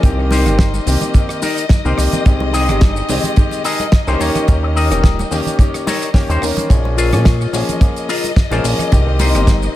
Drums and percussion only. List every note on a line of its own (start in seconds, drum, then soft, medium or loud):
0.03 kick loud
0.03 closed hi-hat medium
0.03 muted conga medium
0.03 shaker medium
0.31 open hi-hat loud
0.31 muted conga medium
0.31 shaker medium
0.46 cross-stick medium
0.46 closed hi-hat medium
0.46 low conga medium
0.46 shaker medium
0.59 kick loud
0.59 snare loud
0.59 closed hi-hat medium
0.59 high conga medium
0.59 shaker medium
0.74 muted conga medium
0.74 shaker medium
0.87 open hi-hat loud
0.87 shaker medium
1.01 closed hi-hat medium
1.01 muted conga medium
1.01 low conga medium
1.01 shaker medium
1.14 kick loud
1.14 closed hi-hat medium
1.14 shaker medium
1.29 cross-stick medium
1.29 closed hi-hat medium
1.29 shaker soft
1.42 open hi-hat loud
1.42 muted conga medium
1.42 shaker medium
1.58 closed hi-hat medium
1.58 shaker medium
1.69 kick loud
1.69 snare loud
1.69 closed hi-hat medium
1.69 muted conga medium
1.69 shaker medium
1.86 shaker soft
1.98 cross-stick medium
1.98 open hi-hat loud
1.98 shaker medium
2.12 closed hi-hat medium
2.12 muted conga medium
2.12 low conga loud
2.12 shaker medium
2.26 kick loud
2.26 closed hi-hat medium
2.26 shaker medium
2.40 muted conga medium
2.54 open hi-hat loud
2.54 shaker medium
2.69 cross-stick medium
2.69 closed hi-hat medium
2.69 low conga medium
2.69 shaker soft
2.81 kick loud
2.81 snare loud
2.81 closed hi-hat medium
2.81 muted conga soft
2.81 high conga medium
2.81 shaker medium
2.96 shaker medium
3.09 open hi-hat loud
3.09 muted conga medium
3.09 shaker medium
3.23 closed hi-hat medium
3.23 low conga medium
3.23 shaker medium
3.36 kick loud
3.36 closed hi-hat medium
3.36 shaker medium
3.51 closed hi-hat medium
3.51 muted conga soft
3.51 shaker soft
3.64 open hi-hat loud
3.64 shaker medium
3.80 closed hi-hat medium
3.80 muted conga medium
3.80 shaker medium
3.92 kick loud
3.92 snare loud
3.92 closed hi-hat medium
3.92 shaker medium
4.08 cross-stick medium
4.08 shaker soft
4.21 open hi-hat loud
4.21 muted conga medium
4.21 shaker medium
4.35 cross-stick medium
4.35 closed hi-hat medium
4.35 low conga medium
4.35 shaker soft
4.48 kick loud
4.48 closed hi-hat medium
4.48 muted conga medium
4.48 shaker medium
4.77 open hi-hat loud
4.77 shaker medium
4.91 cross-stick medium
4.91 closed hi-hat medium
4.91 muted conga soft
4.91 low conga medium
4.91 shaker soft
5.04 kick loud
5.04 snare loud
5.04 closed hi-hat medium
5.04 high conga medium
5.04 shaker medium
5.19 muted conga medium
5.19 shaker medium
5.32 open hi-hat loud
5.32 shaker medium
5.46 closed hi-hat medium
5.46 low conga medium
5.46 shaker soft
5.59 kick loud
5.59 closed hi-hat medium
5.59 muted conga medium
5.59 shaker medium
5.74 cross-stick medium
5.74 closed hi-hat medium
5.74 shaker soft
5.87 open hi-hat loud
5.87 muted conga medium
5.87 shaker medium
6.02 closed hi-hat medium
6.02 shaker medium
6.14 kick loud
6.14 snare loud
6.14 open hi-hat medium
6.14 shaker medium
6.30 closed hi-hat medium
6.30 muted conga medium
6.30 shaker soft
6.42 cross-stick medium
6.42 open hi-hat loud
6.42 shaker medium
6.57 closed hi-hat medium
6.57 muted conga medium
6.57 low conga medium
6.57 shaker soft
6.70 kick loud
6.70 closed hi-hat medium
6.70 ride medium
6.70 shaker medium
6.85 muted conga soft
6.98 open hi-hat loud
6.98 ride medium
6.98 shaker loud
7.13 cross-stick medium
7.13 closed hi-hat medium
7.13 muted conga medium
7.13 low conga medium
7.13 shaker medium
7.25 kick loud
7.25 snare loud
7.25 closed hi-hat medium
7.25 ride medium
7.25 high conga medium
7.25 shaker medium
7.41 shaker medium
7.54 open hi-hat loud
7.54 ride medium
7.54 muted conga medium
7.54 shaker medium
7.69 closed hi-hat medium
7.69 low conga medium
7.69 shaker medium
7.81 kick loud
7.81 closed hi-hat medium
7.81 ride medium
7.81 muted conga medium
7.81 shaker medium
7.96 closed hi-hat soft
7.96 shaker soft
8.09 open hi-hat loud
8.09 ride medium
8.09 shaker loud
8.24 closed hi-hat medium
8.24 muted conga soft
8.24 shaker medium
8.36 kick loud
8.36 snare loud
8.36 closed hi-hat medium
8.36 ride medium
8.36 shaker medium
8.52 cross-stick medium
8.52 muted conga medium
8.52 shaker soft
8.64 open hi-hat loud
8.64 ride medium
8.64 shaker medium
8.79 cross-stick medium
8.79 closed hi-hat medium
8.79 low conga medium
8.79 shaker medium
8.92 kick loud
8.92 closed hi-hat medium
8.92 ride medium
8.92 muted conga medium
8.92 shaker medium
9.19 open hi-hat loud
9.19 ride medium
9.19 muted conga medium
9.19 shaker medium
9.35 cross-stick medium
9.35 closed hi-hat medium
9.35 low conga medium
9.35 shaker soft
9.47 kick loud
9.47 snare loud
9.47 closed hi-hat medium
9.47 ride medium
9.47 high conga medium
9.47 shaker medium
9.62 muted conga medium
9.62 shaker soft